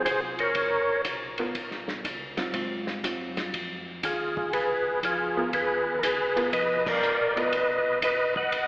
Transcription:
0.05 tonewheel organ C2 G#4 C5, kick, hi-hat pedal, ride
0.39 tonewheel organ A#4 C#5, ride
0.55 tonewheel organ C#2, kick, ride
1.05 tonewheel organ B1, kick, hi-hat pedal, ride
1.38 hollow-body jazz guitar B3 F4 A#4, ride
1.55 tonewheel organ A#1, kick, ride
1.71 snare
1.88 snare
2.04 tonewheel organ C#2, kick, hi-hat pedal, ride
2.37 hollow-body jazz guitar F#3 C4 F4, snare, ride
2.53 tonewheel organ G#2, hollow-body jazz guitar F#3 C4 F4, kick, ride
2.87 snare
3.04 tonewheel organ F#2, hollow-body jazz guitar F#3 C4 F4, kick, hi-hat pedal, ride
3.37 snare, ride
3.54 tonewheel organ F2, kick, ride
4.03 tonewheel organ D#2 F4 G#4, kick, hi-hat pedal, ride
4.37 kick
4.53 tonewheel organ C#2 G#4 B4, kick, ride
5.03 tonewheel organ F2 F4 G#4, kick, hi-hat pedal, ride
5.37 hollow-body jazz guitar B3 F4 A#4
5.53 tonewheel organ D#2 G#4 B4, kick, ride
5.99 tonewheel organ C#2 A#4, kick
6.03 tonewheel organ G#4 B4, hi-hat pedal, ride
6.36 hollow-body jazz guitar B3 F4 A#4, ride
6.53 tonewheel organ F2 B4 D#5, kick, ride
6.86 tonewheel organ A#4 D5, kick, crash
7.02 tonewheel organ A#1, hi-hat pedal
7.36 hollow-body jazz guitar B3 F4 A#4, tonewheel organ B4 D#5, ride
7.53 tonewheel organ B1, kick, ride
8.02 tonewheel organ F#1 B4 D#5, kick, hi-hat pedal, ride
8.36 tonewheel organ D#5 F#5, kick
8.52 tonewheel organ G#1, kick, ride

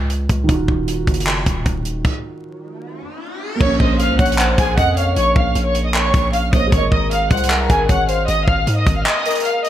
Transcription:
Already playing: 808-style bass C#2
0.10 closed hi-hat
0.29 808-style bass C#2, kick, closed hi-hat
0.44 felt piano D#3 D#4
0.49 808-style bass D#1, felt piano F4, kick, closed hi-hat
0.54 felt piano F#4
0.68 808-style bass D#1, kick
0.88 closed hi-hat
1.07 808-style bass F#1, kick, closed hi-hat
1.14 closed hi-hat
1.20 closed hi-hat
1.27 clap, closed hi-hat
1.46 808-style bass D#1, kick, closed hi-hat
1.66 808-style bass D#1, kick, closed hi-hat
1.85 closed hi-hat
2.05 kick, crash, riser
3.55 felt piano A#3 A#4
3.60 808-style bass A#1, violin section C#5 C#6, kick, crash, impact
3.66 felt piano C#4
3.80 808-style bass A#1, soft synth lead C5, violin section D#5 D#6, kick
3.99 violin section F5 F6, closed hi-hat
4.09 808-style bass C#2
4.19 808-style bass A#1, soft synth lead C#5, violin section F#5 F#6, kick, closed hi-hat
4.26 closed hi-hat
4.32 closed hi-hat
4.38 soft synth lead C5, clap, closed hi-hat
4.58 808-style bass A#1, violin section G#4 G#5, kick, closed hi-hat
4.77 808-style bass F2, soft synth lead D#5, violin section F#5 F#6, kick, closed hi-hat
4.97 soft synth lead C#5, violin section F5 F6, closed hi-hat
5.16 808-style bass A#1, violin section C#5 C#6, closed hi-hat
5.36 808-style bass A#1, violin section F5 F6, kick
5.55 808-style bass A#1, closed hi-hat
5.65 violin section C#5 C#6
5.75 closed hi-hat
5.84 violin section D#5 D#6
5.94 violin section C#5 C#6, clap, closed hi-hat
6.14 808-style bass A#1, kick, closed hi-hat
6.33 violin section F5 F6, closed hi-hat
6.50 808-style bass A#1, felt piano A#3 A#4 C5, violin section D#5 D#6, kick, closed hi-hat
6.55 felt piano C#5
6.67 felt piano G#3 G#4
6.72 808-style bass G#1, felt piano A#4, violin section C#5 C#6, kick, closed hi-hat
6.77 felt piano D#5
6.92 808-style bass G#1, soft synth lead A#4, violin section D#5 D#6, kick
7.11 violin section F5 F6, closed hi-hat
7.31 808-style bass C2, soft synth lead C5, violin section F#5 F#6, kick, closed hi-hat
7.37 closed hi-hat
7.44 closed hi-hat
7.50 soft synth lead A#4, clap, closed hi-hat
7.70 808-style bass G#1, violin section G#4 G#5, kick, closed hi-hat
7.89 808-style bass G#1, soft synth lead C#5, violin section F#5 F#6, kick, closed hi-hat
8.08 soft synth lead C5, violin section F5 F6, closed hi-hat
8.28 808-style bass G#1, violin section D#5 D#6, closed hi-hat
8.47 808-style bass G#1, violin section F5 F6, kick
8.67 808-style bass G#2, closed hi-hat
8.77 violin section D#5 D#6
8.87 808-style bass G#1, kick, closed hi-hat
8.96 violin section F5 F6
9.06 violin section D#5 D#6, clap, closed hi-hat
9.26 soft synth lead A#4, closed hi-hat
9.30 closed hi-hat
9.35 closed hi-hat
9.40 closed hi-hat
9.45 violin section F5 F6, closed hi-hat
9.65 violin section D#5 D#6, open hi-hat

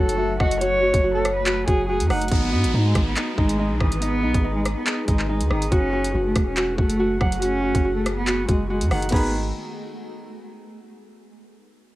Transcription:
Already playing: 808-style bass F#1, ambient pad F#3 A3 F#4, harp D#4 F#4, cello A4, soft synth lead C#5
0.09 closed hi-hat
0.18 harp F#4, soft synth lead E5
0.40 808-style bass F#1, cello F#4, soft synth lead D#5, harp F#5, kick, cross-stick
0.51 closed hi-hat
0.61 harp F#4, soft synth lead C#5, cello C#5, closed hi-hat
0.83 harp F#4
0.94 808-style bass F#1, kick, closed hi-hat
1.04 harp F#4
1.15 cello A4
1.25 cross-stick, closed hi-hat
1.36 cello B4
1.46 harp F#4, clap, closed hi-hat
1.68 808-style bass F#1, harp F#4, cello G#4, kick, closed hi-hat
1.89 harp F#4, cello G#4
2.00 808-style bass F#2, closed hi-hat
2.10 808-style bass F#1, cello D#4, harp F#5, cross-stick, open hi-hat
2.21 closed hi-hat
2.28 ambient pad D#4 G#4 B4, harp D#4, kick, closed hi-hat, downlifter
2.32 808-style bass G#1, cello B3, closed hi-hat
2.35 closed hi-hat
2.53 808-style bass G#2, harp D#4
2.64 808-style bass G#1, closed hi-hat
2.74 808-style bass G#2, harp D#4
2.86 cello G#3
2.95 808-style bass G#1, kick, cross-stick, closed hi-hat
3.06 cello B3
3.16 harp D#4, clap, closed hi-hat
3.38 808-style bass G#1, cello G#3, harp D#4, kick
3.49 closed hi-hat
3.59 harp D#4
3.70 808-style bass B1
3.80 808-style bass G#1, cello E3, harp D#6, kick, cross-stick
3.92 closed hi-hat
4.02 cello B3, harp D#4, closed hi-hat
4.23 808-style bass B1, harp D#4
4.34 808-style bass G#1, kick, closed hi-hat
4.44 harp D#4
4.55 cello G#3
4.65 cross-stick, closed hi-hat
4.77 cello B3
4.87 harp D#4, clap, closed hi-hat
5.08 808-style bass G#1, cello G#3, harp D#4, kick, closed hi-hat
5.19 clap
5.29 cello G#3, harp D#4
5.41 808-style bass D#2, closed hi-hat
5.50 808-style bass G#1, cello D#3, harp D#6, cross-stick
5.62 closed hi-hat
5.72 808-style bass F#1, ambient pad A3 F#4, cello C#4, harp F#4, kick, closed hi-hat
5.93 harp F#4
6.04 closed hi-hat
6.14 808-style bass F#1, harp F#4
6.26 cello A3
6.36 808-style bass E1, kick, cross-stick, closed hi-hat
6.47 cello C#4
6.57 harp F#4, clap, closed hi-hat
6.78 808-style bass F#1, cello A3, harp F#4, kick
6.90 closed hi-hat
7.00 harp F#4
7.21 808-style bass F#1, cello F#3, harp F#5, kick, cross-stick
7.32 closed hi-hat
7.42 cello C#4, harp F#4, closed hi-hat
7.63 harp F#4
7.75 808-style bass F#1, kick, closed hi-hat
7.85 harp F#4
7.96 cello A3
8.06 cross-stick, closed hi-hat
8.17 cello B3
8.27 harp F#4, clap, closed hi-hat
8.48 808-style bass F#1, cello G#3, harp F#4, kick, closed hi-hat
8.69 cello G#3, harp F#4
8.81 808-style bass F#2, closed hi-hat
8.91 808-style bass F#1, cello D#3, harp F#5, cross-stick, open hi-hat
9.02 closed hi-hat
9.09 808-style bass G#1, cello D#3, harp B3 D#4 G#4, kick, closed hi-hat, crash
9.14 harp B4, closed hi-hat

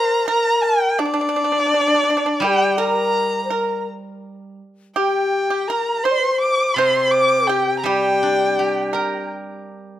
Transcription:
Already playing: xiao A#4, pipa C5, erhu A#5
0.28 pipa A#4, xiao A#4, erhu A#5
0.63 erhu G5
0.99 pipa D4, xiao D4, erhu D5
1.05 pipa D4
1.14 pipa D4
1.21 pipa D4
1.29 pipa D4
1.36 pipa D4
1.44 pipa D4
1.52 pipa D4
1.60 pipa D4
1.66 pipa D4
1.74 pipa D4
1.81 pipa D4
1.87 pipa D4
1.94 pipa D4
2.04 pipa D4
2.10 pipa D4
2.17 pipa D4
2.26 pipa D4
2.40 guzheng G3, pipa G4, xiao A#4
2.44 xiao G4, erhu G5
2.78 xiao A#4, pipa A#4, erhu A#5
3.45 xiao C5
3.50 pipa A#4, xiao A#4
4.96 pipa G4, xiao G4, erhu G5
5.50 pipa G4
5.68 xiao A#4, pipa A#4, erhu A#5
6.04 xiao C5, pipa C5, erhu C6
6.11 xiao D5
6.19 xiao C5
6.40 erhu D6
6.75 guzheng C3, xiao C5, pipa C5, erhu C6
7.11 erhu D6
7.47 xiao G4, pipa G4, erhu G5
7.79 erhu A#5
7.84 guzheng G3, xiao G4, pipa G4, erhu G5
8.23 guzheng D4
8.59 guzheng G4
8.93 pipa A#4, guzheng A#4

